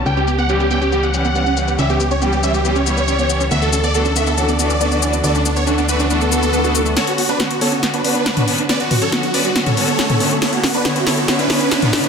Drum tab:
HH |----------------|----------------|----------------|----------------|
SH |xxxxxxxxxxxxxxxx|xxxxxxxxxxxxxxxx|xxxxxxxxxxxxxxxx|xxxxxxxxxxxxxxxx|
SD |----------------|----------------|----------------|----------------|
T2 |----------------|----------------|----------------|----------------|

HH |xxoxxxoxxxoxxxox|xxoxxxoxxxoxxxox|xxoxxxoxxxoxxxox|
SH |----------------|----------------|----------------|
SD |o---o---o---o---|o---o---o---o---|o-o-o-o-o-o-o-o-|
T2 |-------------o--|--o------o---o--|-------------o--|